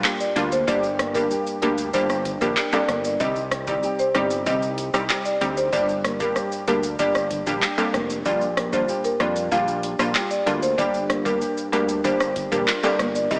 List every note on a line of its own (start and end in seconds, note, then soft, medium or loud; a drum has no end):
0.00 0.67 A#2 medium
0.00 0.32 G3 medium
0.00 0.39 G3 medium
0.00 0.32 A#3 medium
0.00 0.36 A#3 medium
0.00 0.32 D4 medium
0.00 2.25 D4 medium
0.00 0.33 F4 medium
0.04 0.68 G4 medium
0.04 clap loud
0.04 shaker medium
0.20 0.34 D5 medium
0.20 shaker medium
0.36 0.65 D2 medium
0.36 0.65 G3 medium
0.36 0.65 A#3 medium
0.36 0.99 A#3 medium
0.36 0.65 D4 medium
0.36 0.65 F4 medium
0.36 closed hi-hat medium
0.36 shaker medium
0.52 0.66 C5 medium
0.52 shaker medium
0.67 1.27 G1 loud
0.67 3.20 G2 medium
0.67 0.87 G3 medium
0.67 0.87 A#3 medium
0.67 0.87 D4 medium
0.67 0.87 G4 loud
0.67 1.31 G4 medium
0.67 0.96 D5 loud
0.67 kick loud
0.67 shaker medium
0.83 shaker soft
0.83 shaker medium
0.99 1.61 A#3 medium
0.99 cross-stick loud
0.99 closed hi-hat medium
0.99 shaker medium
1.15 1.59 G3 medium
1.15 1.59 A#3 medium
1.15 1.59 D4 medium
1.15 1.59 G4 medium
1.15 1.29 A#4 medium
1.15 kick loud
1.15 shaker medium
1.31 1.94 G4 medium
1.31 shaker medium
1.47 shaker medium
1.62 1.91 D2 loud
1.62 1.92 G3 medium
1.62 2.88 A#3 medium
1.62 1.92 A#3 medium
1.62 1.92 D4 medium
1.62 1.92 G4 medium
1.62 1.76 A#4 medium
1.62 closed hi-hat medium
1.62 shaker soft
1.78 shaker medium
1.93 2.38 G1 loud
1.93 2.38 G3 loud
1.93 2.38 A#3 medium
1.93 2.38 D4 medium
1.93 2.57 G4 medium
1.93 2.38 G4 loud
1.93 2.08 C5 medium
1.93 kick medium
1.93 shaker medium
2.10 cross-stick loud
2.10 shaker medium
2.25 3.27 D4 medium
2.25 kick medium
2.25 closed hi-hat medium
2.25 shaker medium
2.41 2.56 A#1 medium
2.41 2.61 G3 medium
2.41 2.61 A#3 medium
2.41 2.61 D4 medium
2.41 2.61 G4 medium
2.41 2.55 A#4 medium
2.41 kick loud
2.41 shaker medium
2.57 3.21 G4 medium
2.57 clap medium
2.57 shaker medium
2.72 2.92 G3 medium
2.72 2.92 A#3 medium
2.72 2.92 D4 medium
2.72 2.92 G4 medium
2.72 2.87 D5 medium
2.72 high timbale medium
2.72 shaker medium
2.89 3.18 G1 loud
2.89 3.27 A#3 medium
2.89 cross-stick medium
2.89 closed hi-hat medium
2.89 shaker soft
3.04 3.19 D5 medium
3.04 shaker medium
3.20 3.79 C2 loud
3.20 5.73 C3 medium
3.20 3.40 G3 medium
3.20 3.40 C4 medium
3.20 3.40 D#4 medium
3.20 3.40 G4 loud
3.20 3.83 G4 medium
3.20 3.34 D#5 loud
3.20 kick loud
3.20 shaker medium
3.36 shaker soft
3.36 shaker medium
3.51 4.14 C4 medium
3.51 cross-stick loud
3.51 closed hi-hat medium
3.51 shaker medium
3.67 4.11 G3 medium
3.67 4.11 C4 medium
3.67 4.11 D#4 medium
3.67 4.12 G4 medium
3.67 3.82 D5 medium
3.67 kick loud
3.67 shaker medium
3.83 4.46 G4 medium
3.83 shaker medium
3.99 4.13 C5 medium
3.99 shaker medium
4.15 4.48 G1 loud
4.15 4.44 G3 medium
4.15 5.40 C4 medium
4.15 4.44 C4 medium
4.15 4.44 D#4 medium
4.15 4.44 G4 medium
4.15 4.29 D5 medium
4.15 cross-stick medium
4.15 closed hi-hat medium
4.15 shaker soft
4.30 shaker medium
4.46 4.90 C2 loud
4.46 4.90 G3 medium
4.46 4.90 C4 medium
4.46 4.90 D#4 medium
4.46 5.09 G4 medium
4.46 4.90 G4 loud
4.46 4.91 D#5 loud
4.46 kick loud
4.46 shaker medium
4.62 shaker medium
4.78 5.79 D#4 medium
4.78 closed hi-hat medium
4.78 shaker medium
4.94 5.09 C2 medium
4.94 5.37 G3 medium
4.94 5.38 C4 medium
4.94 5.38 D#4 medium
4.94 5.38 G4 medium
4.94 cross-stick medium
4.94 shaker medium
5.10 5.73 G4 medium
5.10 clap loud
5.10 shaker medium
5.25 5.40 D5 medium
5.25 shaker medium
5.41 5.70 D2 medium
5.41 5.70 G3 medium
5.41 5.79 C4 medium
5.41 5.71 C4 medium
5.41 5.71 D#4 medium
5.41 5.71 G4 medium
5.41 closed hi-hat medium
5.41 shaker soft
5.41 shaker medium
5.57 5.71 C5 medium
5.57 shaker medium
5.73 6.32 G1 loud
5.73 8.25 G2 medium
5.73 5.92 G3 medium
5.73 5.92 A#3 medium
5.73 5.92 D4 medium
5.73 5.92 G4 loud
5.73 6.36 G4 medium
5.73 6.01 D5 loud
5.73 kick loud
5.73 shaker medium
5.89 shaker soft
5.89 shaker medium
6.04 6.67 A#3 medium
6.04 cross-stick loud
6.04 closed hi-hat medium
6.04 shaker medium
6.20 6.64 G3 medium
6.20 6.64 A#3 medium
6.20 6.64 D4 medium
6.20 6.64 G4 medium
6.20 6.34 A#4 medium
6.20 kick loud
6.20 shaker medium
6.36 6.99 G4 medium
6.36 cross-stick medium
6.36 shaker medium
6.52 shaker medium
6.68 6.97 D2 medium
6.68 6.97 G3 medium
6.68 7.94 A#3 medium
6.68 6.97 A#3 medium
6.68 6.97 D4 medium
6.68 6.97 G4 medium
6.68 6.82 A#4 medium
6.68 closed hi-hat medium
6.68 shaker soft
6.68 shaker medium
6.83 shaker medium
6.99 7.43 G1 loud
6.99 7.43 G3 medium
6.99 7.43 A#3 medium
6.99 7.43 D4 medium
6.99 7.62 G4 medium
6.99 7.43 G4 loud
6.99 7.44 D5 loud
6.99 kick medium
6.99 shaker medium
7.15 cross-stick loud
7.15 shaker medium
7.31 9.83 D4 medium
7.31 kick medium
7.31 closed hi-hat medium
7.31 shaker medium
7.47 7.61 A#1 medium
7.47 7.66 G3 medium
7.47 7.66 A#3 medium
7.47 7.66 D4 medium
7.47 7.66 G4 medium
7.47 kick loud
7.47 shaker medium
7.62 8.26 G4 medium
7.62 clap medium
7.62 shaker medium
7.78 7.98 G3 medium
7.78 7.98 A#3 medium
7.78 7.98 D4 medium
7.78 7.98 G4 medium
7.78 high timbale medium
7.78 shaker medium
7.94 8.23 F1 medium
7.94 8.57 A#3 medium
7.94 cross-stick medium
7.94 closed hi-hat medium
7.94 shaker soft
8.10 shaker medium
8.25 8.85 A#1 loud
8.25 10.78 A#2 medium
8.25 8.45 G3 medium
8.25 8.45 A#3 medium
8.25 8.45 D4 medium
8.25 8.45 F4 loud
8.25 8.88 G4 medium
8.25 8.40 D5 loud
8.25 kick loud
8.25 shaker medium
8.41 shaker soft
8.57 9.20 A#3 medium
8.57 cross-stick loud
8.57 closed hi-hat medium
8.57 shaker medium
8.73 9.16 G3 medium
8.73 9.17 A#3 medium
8.73 9.17 D4 medium
8.73 9.17 F4 medium
8.73 8.87 C5 medium
8.73 kick loud
8.73 shaker medium
8.88 9.52 G4 medium
8.88 shaker medium
9.04 9.19 A#4 medium
9.04 shaker medium
9.20 9.49 F2 loud
9.20 9.49 G3 medium
9.20 9.49 A#3 medium
9.20 10.47 A#3 medium
9.20 9.50 D4 medium
9.20 9.50 F4 medium
9.20 9.35 D5 medium
9.20 cross-stick medium
9.20 closed hi-hat medium
9.20 shaker soft
9.36 shaker medium
9.52 9.95 A#1 loud
9.52 9.95 G3 loud
9.52 9.95 A#3 medium
9.52 9.96 D4 medium
9.52 9.96 F4 loud
9.52 10.15 G4 medium
9.52 9.97 F5 medium
9.52 kick loud
9.52 shaker medium
9.68 shaker medium
9.83 12.36 D4 medium
9.83 closed hi-hat medium
9.83 shaker medium
9.99 10.14 A#1 medium
9.99 10.43 G3 medium
9.99 10.43 A#3 medium
9.99 10.43 D4 medium
9.99 10.43 F4 medium
9.99 cross-stick medium
9.99 shaker medium
10.15 10.79 G4 medium
10.15 clap medium
10.15 shaker medium
10.31 10.45 D5 medium
10.31 shaker medium
10.46 10.76 D2 medium
10.46 10.76 G3 medium
10.46 10.76 A#3 medium
10.46 11.10 A#3 medium
10.46 10.76 D4 medium
10.46 10.76 F4 medium
10.46 closed hi-hat medium
10.46 shaker soft
10.46 shaker medium
10.63 10.77 C5 medium
10.63 shaker medium
10.78 11.37 G1 loud
10.78 13.31 G2 medium
10.78 10.97 G3 loud
10.78 10.98 A#3 medium
10.78 10.98 D4 medium
10.78 10.98 G4 loud
10.78 11.41 G4 medium
10.78 11.06 D5 loud
10.78 kick loud
10.78 shaker medium
10.94 shaker soft
10.94 shaker medium
11.10 11.72 A#3 medium
11.10 cross-stick loud
11.10 closed hi-hat medium
11.10 shaker medium
11.25 11.69 G3 medium
11.25 11.69 A#3 medium
11.25 11.69 D4 medium
11.25 11.69 G4 medium
11.25 11.40 A#4 medium
11.25 kick loud
11.25 shaker medium
11.41 12.04 G4 medium
11.41 shaker medium
11.57 shaker medium
11.72 12.02 D2 loud
11.72 12.02 G3 medium
11.72 12.02 A#3 medium
11.72 12.98 A#3 medium
11.72 12.02 D4 medium
11.72 12.02 G4 medium
11.72 11.87 A#4 medium
11.72 closed hi-hat medium
11.72 shaker soft
11.89 shaker medium
12.04 12.48 G1 loud
12.04 12.48 G3 medium
12.04 12.48 A#3 medium
12.04 12.48 D4 medium
12.04 12.68 G4 medium
12.04 12.48 G4 loud
12.04 12.18 C5 medium
12.04 kick medium
12.04 shaker medium
12.20 cross-stick loud
12.20 shaker medium
12.36 13.37 D4 medium
12.36 kick loud
12.36 closed hi-hat medium
12.36 shaker medium
12.52 12.66 A#1 medium
12.52 12.71 G3 medium
12.52 12.71 A#3 medium
12.52 12.71 D4 medium
12.52 12.72 G4 medium
12.52 12.66 A#4 medium
12.52 kick loud
12.52 shaker medium
12.68 12.84 F4 medium
12.68 clap medium
12.68 shaker medium
12.83 13.03 G3 medium
12.83 13.03 A#3 medium
12.83 13.03 D4 medium
12.83 13.31 G4 medium
12.83 13.03 G4 medium
12.83 12.98 D5 medium
12.83 high timbale medium
12.83 shaker medium
12.99 13.28 G1 medium
12.99 13.37 A#3 medium
12.99 cross-stick medium
12.99 closed hi-hat medium
12.99 shaker soft
13.15 13.29 D5 medium
13.15 shaker medium
13.31 13.39 C2 loud
13.31 13.39 C3 medium
13.31 13.39 G3 medium
13.31 13.39 C4 medium
13.31 13.39 D#4 medium
13.31 13.39 G4 loud
13.31 13.39 G4 medium
13.31 13.39 D#5 loud
13.31 kick loud
13.31 shaker medium